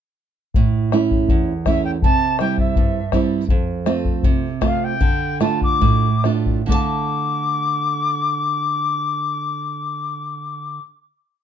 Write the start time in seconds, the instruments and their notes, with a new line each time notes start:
0.54 nylon-string guitar A2, bombo low
0.92 nylon-string guitar A3 C#4 E4, bombo rim
1.11 bombo low
1.29 nylon-string guitar E2, bombo low
1.66 nylon-string guitar A3 C#4 E4, quena E5, bombo rim, bombo low
1.85 quena G5
2.02 nylon-string guitar C3, quena A5, bombo low
2.39 nylon-string guitar G3 C4 E4, quena G5, bombo rim
2.58 quena E5, bombo low
2.76 nylon-string guitar G2, bombo low
3.12 nylon-string guitar G3 C4 E4, bombo rim, bombo low
3.49 nylon-string guitar F2, bombo low
3.86 nylon-string guitar A3 C4 F4, bombo rim
4.05 bombo low
4.23 nylon-string guitar C3, bombo low
4.61 nylon-string guitar A3 C4 F4, bombo rim, bombo low
4.66 quena F5
4.84 quena G5
5.01 nylon-string guitar D3, bombo low
5.40 nylon-string guitar A3 D4 F4, quena A5, bombo rim
5.61 quena D6, bombo low
5.81 nylon-string guitar A2, bombo low
6.24 nylon-string guitar A3 D4 F4, bombo rim
6.46 bombo low
6.66 nylon-string guitar D3 A3 D4, quena D6, bombo low
6.71 nylon-string guitar A4 F5 A5